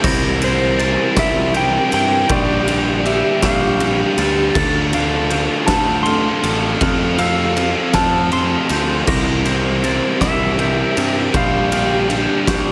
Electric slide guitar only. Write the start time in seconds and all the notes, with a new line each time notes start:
0.44 C5
1.19 E5
1.57 G5
1.94 G5
2.32 D5
3.06 E5
3.45 F5
4.94 F5
5.67 A5
6.03 C6
7.19 F5
7.94 A5
8.33 C6
9.46 C5
10.21 E5
11.37 F5